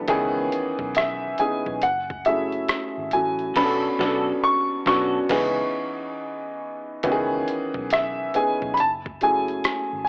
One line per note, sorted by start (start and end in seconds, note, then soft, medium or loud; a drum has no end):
0.00 0.10 D4 medium
0.00 0.10 F#4 medium
0.00 0.10 A4 medium
0.08 0.48 C#2 loud
0.08 1.34 D#3 loud
0.08 1.33 E3 loud
0.08 1.33 B3 loud
0.08 1.34 C#4 loud
0.08 1.34 G#4 loud
0.08 kick loud
0.08 closed hi-hat medium
0.52 closed hi-hat medium
0.79 1.35 B1 medium
0.79 kick medium
0.95 1.41 E5 medium
0.95 cross-stick loud
0.95 closed hi-hat medium
1.38 1.82 E3 medium
1.38 1.82 B3 medium
1.38 1.83 C#4 medium
1.38 1.83 D#4 medium
1.38 1.83 G#4 medium
1.38 1.84 G#5 medium
1.38 muted fingered electric bass stroke soft
1.38 closed hi-hat medium
1.66 1.81 B1 medium
1.66 kick medium
1.82 2.65 F#1 medium
1.82 2.27 F#5 medium
1.82 closed hi-hat medium
2.10 kick medium
2.25 3.09 F#3 medium
2.25 3.09 A3 medium
2.25 3.09 C#4 medium
2.25 3.10 E4 medium
2.25 3.10 G#4 medium
2.25 3.15 E5 medium
2.25 closed hi-hat medium
2.52 closed hi-hat soft
2.69 cross-stick loud
2.69 closed hi-hat medium
2.98 3.11 G#1 medium
3.11 3.52 A1 medium
3.11 3.54 F#3 medium
3.11 3.54 A3 medium
3.11 3.55 C#4 medium
3.11 3.55 E4 medium
3.11 3.55 F#4 medium
3.11 3.58 G#5 medium
3.11 closed hi-hat medium
3.39 closed hi-hat soft
3.56 3.88 B1 medium
3.56 3.87 F#3 medium
3.56 3.88 B3 loud
3.56 3.88 C#4 medium
3.56 3.88 D4 medium
3.56 3.88 F#4 medium
3.56 3.87 A4 medium
3.56 4.46 B5 medium
3.56 kick loud
3.56 snare loud
3.56 crash medium
3.64 3.92 A4 loud
3.99 4.31 B1 loud
3.99 4.31 F#3 medium
3.99 4.31 B3 medium
3.99 4.31 C#4 medium
3.99 4.32 D4 medium
3.99 4.32 F#4 medium
3.99 4.31 A4 medium
3.99 kick medium
3.99 snare medium
4.08 4.36 A4 medium
4.44 4.86 C#6 medium
4.86 5.18 B1 medium
4.86 5.18 F#3 medium
4.86 5.18 B3 loud
4.86 5.18 C#4 medium
4.86 5.19 D4 loud
4.86 5.19 F#4 medium
4.86 5.19 F#4 loud
4.86 5.18 A4 medium
4.86 6.13 C#6 medium
4.86 kick loud
4.86 snare loud
5.29 5.61 C#2 loud
5.29 5.61 E3 medium
5.29 5.62 B3 medium
5.29 5.62 C#4 medium
5.29 5.62 D#4 loud
5.29 5.62 G#4 medium
5.29 kick loud
5.29 snare loud
5.29 crash medium
7.03 7.43 C#2 loud
7.03 8.29 D#3 loud
7.03 8.29 E3 loud
7.03 8.29 B3 medium
7.03 8.29 C#4 loud
7.03 7.13 F#4 medium
7.03 kick loud
7.03 closed hi-hat medium
7.12 8.33 G#4 loud
7.48 closed hi-hat medium
7.74 8.30 B1 medium
7.74 kick medium
7.90 8.36 E5 medium
7.90 cross-stick loud
7.90 closed hi-hat medium
8.34 8.78 E3 medium
8.34 8.78 B3 medium
8.34 8.78 C#4 medium
8.34 8.78 D#4 medium
8.34 8.79 G#4 medium
8.34 8.75 G#5 medium
8.34 muted fingered electric bass stroke soft
8.34 closed hi-hat medium
8.62 8.76 B1 medium
8.62 kick medium
8.74 8.78 B5 medium
8.74 closed hi-hat medium
8.79 9.61 F#1 medium
8.79 8.90 A5 medium
9.06 kick medium
9.21 10.05 F#3 medium
9.21 10.05 A3 medium
9.21 10.05 C#4 medium
9.21 10.05 E4 medium
9.21 10.05 G#4 medium
9.21 10.03 G#5 medium
9.21 closed hi-hat soft
9.48 closed hi-hat soft
9.64 cross-stick loud
9.64 closed hi-hat medium
9.93 10.07 G#1 medium
10.05 10.09 G#5 medium